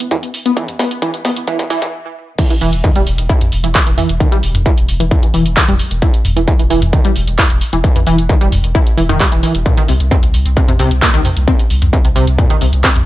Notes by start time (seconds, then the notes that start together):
0.00 closed hi-hat
0.11 E3, kick, closed hi-hat, mid tom
0.23 closed hi-hat
0.34 open hi-hat
0.46 B3, closed hi-hat
0.57 E3, kick, closed hi-hat
0.68 closed hi-hat, mid tom
0.79 B3, kick, open hi-hat
0.91 closed hi-hat
1.02 E3, kick, closed hi-hat
1.14 closed hi-hat
1.25 B3, kick, mid tom, open hi-hat
1.36 closed hi-hat
1.47 E3, kick, closed hi-hat
1.59 kick, closed hi-hat
1.70 E3, kick, open hi-hat
1.82 kick, closed hi-hat, mid tom
2.38 E3, kick, closed hi-hat, crash
2.50 E3, closed hi-hat
2.61 E1 E3, open hi-hat
2.73 E1, closed hi-hat
2.84 D#3, kick, closed hi-hat, mid tom
2.96 E1 G3, closed hi-hat
3.07 E1, open hi-hat
3.18 E1, closed hi-hat
3.29 E4, kick, closed hi-hat
3.41 closed hi-hat, mid tom
3.52 E1, open hi-hat
3.64 E1 E3, closed hi-hat
3.75 E3, kick, clap, closed hi-hat
3.87 E1 E3, closed hi-hat
3.98 E3, mid tom, open hi-hat
4.09 E1, closed hi-hat
4.20 D#3, kick, closed hi-hat
4.32 G3, closed hi-hat
4.43 E1, open hi-hat
4.55 E1, closed hi-hat, mid tom
4.66 E4, kick, closed hi-hat
4.77 E1, closed hi-hat
4.88 E1, open hi-hat
5.00 E1 E3, closed hi-hat
5.11 E3, kick, closed hi-hat, mid tom
5.23 E3, closed hi-hat
5.34 E1 E3, open hi-hat
5.46 E1, closed hi-hat
5.57 D#3, kick, clap, closed hi-hat
5.68 E1 G3, closed hi-hat, mid tom
5.79 open hi-hat
5.91 E1, closed hi-hat
6.02 E4, kick, closed hi-hat
6.14 closed hi-hat
6.25 E1, mid tom, open hi-hat
6.36 E1 E3, closed hi-hat
6.48 E3, kick, closed hi-hat
6.59 E1 E3, closed hi-hat
6.70 E1 E3, open hi-hat
6.82 E1, closed hi-hat, mid tom
6.93 D#3, kick, closed hi-hat
7.05 G3, closed hi-hat
7.16 E1, open hi-hat
7.27 E1, closed hi-hat
7.38 E4, kick, clap, closed hi-hat, mid tom
7.50 E1, closed hi-hat
7.61 open hi-hat
7.73 E1 E3, closed hi-hat
7.84 E3, kick, closed hi-hat
7.96 E3, closed hi-hat, mid tom
8.07 E1 E3, open hi-hat
8.18 E1, closed hi-hat
8.29 D#3, kick, closed hi-hat
8.41 E1 G3, closed hi-hat
8.52 E1, mid tom, open hi-hat
8.64 E1, closed hi-hat
8.75 E4, kick, closed hi-hat
8.87 closed hi-hat
8.97 E1 E3, open hi-hat
9.09 E1 D#3, closed hi-hat, mid tom
9.20 G3, kick, clap, closed hi-hat
9.32 E1 E3, closed hi-hat
9.43 E3, open hi-hat
9.55 E1, closed hi-hat
9.66 A#2, kick, closed hi-hat
9.77 D#3, closed hi-hat
9.88 C2 C3, open hi-hat
10.00 C2, closed hi-hat
10.11 C4, kick, closed hi-hat, mid tom
10.23 C2, closed hi-hat
10.34 C2, open hi-hat
10.46 C2, closed hi-hat
10.57 C3, kick, closed hi-hat
10.68 C3, closed hi-hat, mid tom
10.79 C2 C3, open hi-hat
10.91 C2, closed hi-hat
11.02 A#2, kick, clap, closed hi-hat
11.14 C2 D#3, closed hi-hat
11.25 C3, mid tom, open hi-hat
11.36 C2, closed hi-hat
11.48 C4, kick, closed hi-hat
11.59 closed hi-hat
11.70 C2, open hi-hat
11.82 C2, closed hi-hat, mid tom
11.93 C3, kick, closed hi-hat
12.05 C2 C3, closed hi-hat
12.16 C2 C3, open hi-hat
12.27 C2, closed hi-hat
12.38 A#2, kick, closed hi-hat, mid tom
12.50 D#3, closed hi-hat
12.61 C2 C3, open hi-hat
12.73 C2, closed hi-hat
12.84 C4, kick, clap, closed hi-hat
12.96 C2, closed hi-hat, mid tom